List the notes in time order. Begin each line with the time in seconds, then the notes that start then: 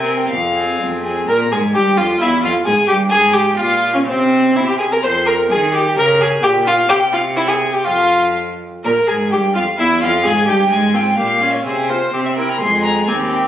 Already playing: C3 G#5
0.02 C4 A#4
0.16 G5
0.29 F2 F5
0.53 C4 G#4
0.79 F2
1.03 C4 G#4
1.28 A#2 A#4 A#5
1.52 G#2 G#4 G#5
1.74 G2 G4 G5
1.97 F2 F4 F5
2.21 E2 E4 E5
2.43 F2 F4 F5
2.66 G#2 G#4 G#5
2.88 G2 G4 G5
3.10 G#2 G#4 G#5
3.33 G4 G5
3.57 A#2 F4 F5
3.93 C#4 C#5
4.05 C3 C4 C5
4.55 C3 E4 E5
4.67 G4 G5
4.79 G#4 G#5
4.92 A#4 A#5
5.03 F2 C5 C6
5.26 A#4 A#5
5.51 D#3 G#4 G#5
5.74 G4 G5
5.97 C#3 A#4 A#5
6.21 G#4 G#5
6.43 A#2 G4 G5
6.67 F4 F5
6.89 C3 G4 G5
7.13 F4 F5
7.36 E4 E5
7.48 G#4 G#5
7.73 G4 G5
7.85 F2 F4 F5
8.84 A#2 A#4 A#5
9.08 G#2 G#4 G#5
9.31 G2 G4 G5
9.55 F2 F4 F5
9.78 E2 E4 E5
10.00 F2 F4 F5
10.24 G#2 G#4 G#5
10.47 G2 G4 G5
10.69 G#2 G#3 G#4 G#5
10.94 C4 F4 G5
11.17 A#2 A#3 G4 F5
11.40 C#4 F4
11.53 C#5
11.65 C3 C4 G#4 C5
11.89 F4 C5
12.13 C3 C4 G4
12.25 E5
12.36 E4 A#4 G5
12.49 A#5
12.60 F2 G#3 G#4 C6
12.84 A#5
13.07 D#2 C4 G4 G#5
13.30 G5